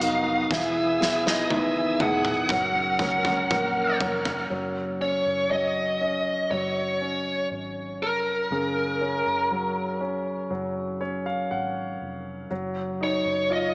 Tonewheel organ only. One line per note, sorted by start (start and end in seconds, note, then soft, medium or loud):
0.00 0.47 B3 medium
0.00 0.47 A#5 medium
0.00 2.47 D#6 medium
0.50 2.48 G#4 medium
0.50 2.48 G#5 medium
2.50 4.48 A#4 medium
2.50 4.48 F#5 medium
2.50 4.48 F6 medium